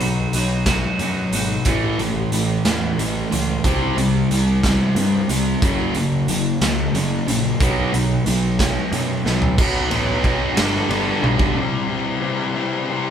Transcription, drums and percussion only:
0.00 closed hi-hat
0.33 closed hi-hat
0.66 kick, snare, closed hi-hat
0.99 closed hi-hat
1.33 closed hi-hat
1.65 kick, closed hi-hat
1.99 closed hi-hat
2.32 closed hi-hat
2.65 snare, closed hi-hat
2.99 closed hi-hat
3.32 closed hi-hat
3.64 kick, closed hi-hat
3.98 closed hi-hat
4.31 closed hi-hat
4.63 kick, snare, closed hi-hat
4.96 closed hi-hat
5.29 closed hi-hat
5.62 kick, closed hi-hat
5.95 closed hi-hat
6.28 closed hi-hat
6.61 snare, closed hi-hat
6.95 closed hi-hat
7.28 closed hi-hat
7.60 kick, closed hi-hat
7.94 closed hi-hat
8.26 closed hi-hat
8.59 kick, snare, closed hi-hat
8.93 closed hi-hat
9.26 snare
9.42 floor tom
9.58 kick, crash
9.91 ride
10.24 kick, ride
10.57 snare, ride
10.91 ride
11.24 high tom
11.39 kick

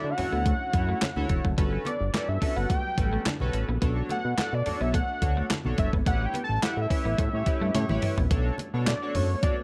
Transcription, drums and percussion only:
0.18 open hi-hat, low conga
0.46 kick, closed hi-hat, low conga
0.73 kick, closed hi-hat
1.02 snare, clap, closed hi-hat, high conga
1.16 high conga
1.29 kick, closed hi-hat
1.45 kick
1.58 kick, closed hi-hat, muted conga
1.85 closed hi-hat, muted conga
2.14 snare, clap, closed hi-hat, high conga
2.42 kick, open hi-hat
2.70 kick, closed hi-hat, muted conga, low conga
2.98 kick, closed hi-hat
3.26 snare, clap, closed hi-hat, high conga
3.40 high conga
3.53 closed hi-hat
3.82 kick, closed hi-hat, muted conga
4.09 closed hi-hat, muted conga
4.38 snare, clap, closed hi-hat, high conga
4.66 open hi-hat, low conga
4.94 kick, closed hi-hat, low conga
5.22 kick, closed hi-hat
5.50 snare, clap, closed hi-hat, high conga
5.65 high conga
5.78 kick, closed hi-hat
5.93 kick
6.06 kick, closed hi-hat, muted conga
6.34 closed hi-hat, muted conga
6.62 snare, clap, closed hi-hat, high conga
6.90 kick, open hi-hat
7.18 kick, closed hi-hat, muted conga, low conga
7.46 kick, closed hi-hat
7.75 snare, closed hi-hat, high conga
7.89 high tom, high conga
8.02 mid tom, open hi-hat
8.18 floor tom
8.31 kick, closed hi-hat, muted conga
8.58 closed hi-hat, muted conga
8.87 snare, clap, closed hi-hat, high conga
9.15 open hi-hat, low conga
9.43 kick, closed hi-hat, muted conga, low conga

